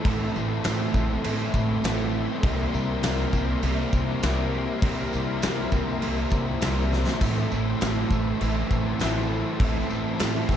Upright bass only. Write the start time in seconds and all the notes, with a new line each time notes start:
0.05 A1
0.36 A1
0.65 A1
0.94 A1
1.24 A1
1.54 A1
1.83 A1
2.44 C2
2.73 C2
3.03 C2
3.33 C2
3.63 C2
3.93 C2
4.23 C2
4.82 C2
5.14 C2
5.44 C2
5.72 C2
6.04 C2
6.32 C2
6.62 C2
7.22 A1
7.52 A1
7.82 A1
8.11 A1
8.41 A1
8.71 A1
9.00 A1
9.60 A1
9.89 A1
10.19 A1
10.49 A1